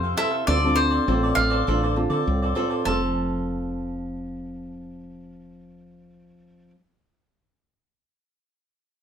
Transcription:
0.00 0.14 F2 medium
0.00 0.45 C3 soft
0.00 0.13 C5 medium
0.00 0.17 F5 soft
0.04 0.16 A4 soft
0.04 0.17 C5 soft
0.17 0.45 C4 soft
0.17 0.31 E4 medium
0.17 0.45 E4 soft
0.17 0.31 A4 medium
0.17 0.45 A4 medium
0.17 0.30 C5 medium
0.17 0.47 E5 medium
0.17 0.29 F5 medium
0.31 0.46 A4 soft
0.31 0.46 C5 soft
0.31 0.45 F5 soft
0.47 0.99 D2 medium
0.47 1.04 D3 medium
0.47 0.57 C4 medium
0.47 0.75 F4 medium
0.47 0.57 F4 soft
0.47 0.76 A4 medium
0.47 0.57 A4 medium
0.47 0.76 C5 medium
0.47 0.78 D5 medium
0.47 0.76 D5 medium
0.64 1.03 C4 medium
0.64 1.03 F4 medium
0.64 1.04 A4 medium
0.76 1.38 C5 medium
0.76 muted cavaquinho stroke soft
0.90 1.06 A4 medium
0.90 1.06 C5 medium
0.90 1.05 D5 medium
1.07 1.33 A1 medium
1.07 1.64 A2 medium
1.07 1.62 C4 soft
1.07 1.21 F4 soft
1.07 1.62 F4 medium
1.07 1.21 A4 soft
1.07 1.63 A4 medium
1.07 1.22 C5 medium
1.07 1.22 D5 medium
1.23 1.36 A4 soft
1.23 1.36 C5 soft
1.23 1.36 D5 soft
1.35 1.62 A1 medium
1.35 1.50 F4 soft
1.35 1.51 A4 soft
1.35 1.50 C5 soft
1.35 1.49 D5 soft
1.35 2.51 F5 medium
1.50 1.66 A4 medium
1.50 1.65 C5 medium
1.50 1.65 D5 medium
1.67 2.06 A1 medium
1.67 2.24 D3 medium
1.67 1.85 C4 soft
1.67 1.81 F4 medium
1.67 1.85 F4 soft
1.67 1.81 A4 medium
1.67 1.85 A4 medium
1.67 1.81 C5 medium
1.67 1.82 D5 medium
1.83 1.95 A4 soft
1.83 1.95 C5 soft
1.83 1.96 D5 soft
1.96 2.51 C4 medium
1.96 2.51 F4 medium
1.96 2.52 A4 medium
1.96 muted cavaquinho stroke soft
2.10 2.23 D3 medium
2.10 2.40 A4 soft
2.10 2.40 C5 medium
2.10 2.39 D5 medium
2.27 2.52 C2 medium
2.27 2.83 A2 soft
2.42 2.54 A4 soft
2.42 2.55 C5 soft
2.42 2.56 D5 soft
2.55 2.83 C4 soft
2.55 2.69 F4 medium
2.55 2.84 F4 soft
2.55 2.70 A4 medium
2.55 2.84 A4 medium
2.55 2.69 C5 medium
2.55 2.68 D5 medium
2.70 2.85 A4 soft
2.70 2.84 C5 soft
2.70 2.84 D5 soft
2.84 6.71 F1 medium
2.84 6.74 F3 medium
2.84 6.75 C4 soft
2.84 6.75 A4 medium
2.84 6.75 C5 medium
2.84 6.70 A5 medium
2.88 6.76 A4 medium
2.88 6.76 F5 medium

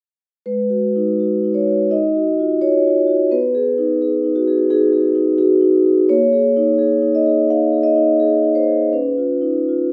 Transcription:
0.46 1.86 G#3 soft
0.46 1.55 B4 medium
0.70 1.09 F#4 soft
0.96 1.34 D#4 soft
1.20 1.58 F#4 soft
1.44 1.81 D#4 soft
1.54 1.90 C#5 medium
1.68 1.91 F#4 soft
1.91 3.28 D#4 soft
1.91 2.62 D#5 medium
2.15 2.53 F#4 soft
2.39 2.76 F4 soft
2.61 2.99 F#4 soft
2.61 3.32 C#5 medium
2.86 3.23 F4 soft
3.07 3.31 F#4 soft
3.31 4.66 B3 soft
3.31 4.36 B4 medium
3.55 3.92 G#4 soft
3.78 4.15 D#4 soft
4.02 4.38 G#4 soft
4.24 4.61 D#4 soft
4.36 4.70 F#4 medium
4.47 4.69 G#4 soft
4.71 5.07 D#4 soft
4.71 4.91 G#4 medium
4.92 5.30 G#4 soft
5.15 5.53 D#4 soft
5.38 6.11 F#4 medium
5.38 5.77 G#4 soft
5.61 6.01 D#4 soft
5.86 6.11 G#4 soft
6.09 7.44 A#3 soft
6.09 7.14 C#5 medium
6.33 6.71 G#4 soft
6.57 6.94 D#4 soft
6.78 7.16 G#4 soft
7.02 7.39 D#4 soft
7.15 7.49 D#5 medium
7.27 7.63 G#4 soft
7.50 7.87 D#4 soft
7.50 7.85 F5 medium
7.73 8.10 G#4 soft
7.83 8.55 D#5 medium
7.95 8.34 D#4 soft
8.20 8.58 G#4 soft
8.43 8.82 D#4 soft
8.55 8.92 C5 medium
8.68 8.92 G#4 soft
8.93 9.93 C#4 soft
8.93 9.93 B4 medium
9.18 9.57 F4 soft
9.41 9.81 D#4 soft
9.68 9.93 F4 soft

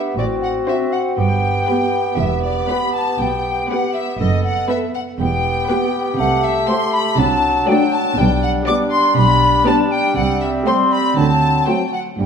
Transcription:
0.00 0.14 B3 soft
0.00 0.19 G4 soft
0.00 0.17 E5 medium
0.17 0.58 A1 medium
0.17 0.57 A2 soft
0.17 1.20 C4 soft
0.17 1.20 F#4 soft
0.17 0.24 D5 medium
0.17 0.26 D5 soft
0.42 0.48 F#5 medium
0.42 0.52 F#5 medium
0.67 0.84 C4 soft
0.67 1.05 D4 soft
0.67 1.05 F#4 soft
0.67 0.85 F#4 soft
0.67 1.05 C5 soft
0.67 0.94 E5 medium
0.67 0.76 E5 medium
0.93 1.01 F#5 medium
0.93 1.17 F#5 medium
1.17 1.58 G1 medium
1.17 1.58 G2 medium
1.17 4.92 B3 soft
1.17 4.19 G4 soft
1.17 2.16 G5 medium
1.17 2.17 G5 medium
1.69 2.06 B3 soft
1.69 1.86 B3 soft
1.69 2.06 G4 soft
1.69 1.86 G4 soft
1.69 2.06 B4 soft
2.17 2.58 E1 medium
2.17 2.59 E2 medium
2.17 2.43 E5 medium
2.17 2.25 E5 medium
2.43 2.68 D5 medium
2.43 2.51 D5 medium
2.68 3.06 B3 soft
2.68 2.86 B3 soft
2.68 3.06 G4 soft
2.68 2.86 G4 soft
2.68 3.06 B4 medium
2.68 2.93 B5 medium
2.68 2.94 B5 medium
2.93 3.18 A5 medium
2.93 3.19 A5 medium
3.18 3.58 B1 medium
3.18 3.59 B2 medium
3.18 3.69 G5 medium
3.18 3.71 G5 medium
3.69 4.06 B3 medium
3.69 3.85 B3 soft
3.69 4.06 G4 medium
3.69 3.86 G4 soft
3.69 4.07 B4 medium
3.69 3.93 F#5 medium
3.94 4.00 E5 medium
3.94 4.19 E5 medium
4.19 4.59 F#1 medium
4.19 4.59 F#2 medium
4.19 4.90 A4 medium
4.19 4.43 D#5 medium
4.19 4.44 D#5 medium
4.43 4.68 F#5 medium
4.43 4.69 F#5 medium
4.69 5.06 B3 soft
4.69 4.87 B3 soft
4.69 5.07 A4 soft
4.69 4.86 A4 soft
4.69 5.06 B4 medium
4.69 4.94 E5 medium
4.69 4.77 E5 medium
4.94 5.02 F#5 medium
4.94 5.01 F#5 medium
5.19 5.59 E1 medium
5.19 5.59 E2 medium
5.19 6.21 B3 medium
5.19 7.20 G4 medium
5.19 6.17 G5 medium
5.19 5.90 G5 medium
5.69 6.06 B3 medium
5.69 5.86 B3 medium
5.69 6.06 G4 medium
5.69 5.86 G4 soft
5.69 6.06 B4 medium
6.18 6.58 C2 medium
6.18 6.58 C3 medium
6.18 7.20 A3 medium
6.18 6.46 F#5 medium
6.18 6.43 F#5 medium
6.44 6.69 E5 medium
6.68 7.05 A3 medium
6.68 6.84 A3 soft
6.68 7.06 G4 medium
6.68 6.85 G4 soft
6.68 7.06 C5 medium
6.68 6.93 C6 medium
6.68 6.75 C6 medium
6.93 6.99 B5 medium
6.93 7.18 B5 medium
7.12 7.20 B5 soft
7.17 7.58 C2 medium
7.17 7.57 C3 medium
7.17 8.17 F#3 medium
7.17 10.18 D4 medium
7.17 7.68 A5 medium
7.17 7.70 A5 medium
7.68 7.84 F#3 medium
7.68 8.05 A3 medium
7.68 7.84 D4 medium
7.68 8.05 F#4 medium
7.68 8.05 D5 medium
7.68 7.93 G5 medium
7.92 8.18 A5 medium
7.92 8.00 A5 medium
8.17 8.58 B1 medium
8.17 8.57 B2 medium
8.17 11.19 G3 medium
8.17 8.24 G5 medium
8.17 8.43 G5 medium
8.42 8.50 F#5 medium
8.67 8.84 G3 medium
8.67 9.04 B3 medium
8.67 8.84 D4 medium
8.67 9.04 G4 medium
8.67 9.05 D5 medium
8.67 8.73 D6 medium
8.67 8.76 D6 medium
8.91 9.16 C6 medium
8.91 9.17 C6 medium
9.17 9.57 B1 medium
9.17 9.56 B2 medium
9.17 9.66 B5 medium
9.17 9.69 B5 medium
9.66 9.83 G3 medium
9.66 10.04 B3 medium
9.66 9.82 D4 medium
9.66 10.04 G4 medium
9.66 10.04 D5 medium
9.66 9.75 A5 medium
9.66 9.93 A5 medium
9.92 10.16 G5 medium
10.17 10.57 C2 medium
10.17 10.57 C3 medium
10.17 11.91 C4 medium
10.17 10.41 F#5 medium
10.17 10.23 F#5 medium
10.41 10.49 E5 medium
10.41 10.69 E5 medium
10.66 10.82 G3 medium
10.66 11.04 A3 medium
10.66 10.82 C4 medium
10.66 11.05 G4 medium
10.66 11.04 C5 medium
10.66 10.75 C6 medium
10.66 10.94 C6 medium
10.92 11.19 B5 medium
10.92 11.17 B5 medium
11.16 11.58 D2 medium
11.16 11.57 D3 medium
11.16 11.91 F#3 medium
11.16 11.67 A5 medium
11.16 11.68 A5 medium
11.67 11.84 F#3 medium
11.67 12.06 A3 medium
11.67 11.84 C4 soft
11.67 12.06 F#4 medium
11.67 12.06 C5 medium
11.67 11.94 G5 medium
11.67 11.93 G5 medium
11.93 12.01 F#5 medium
11.93 12.00 F#5 medium
12.19 12.26 G1 medium
12.19 12.26 G2 medium
12.19 12.26 G3 soft
12.19 12.26 B3 medium
12.19 12.26 G5 medium

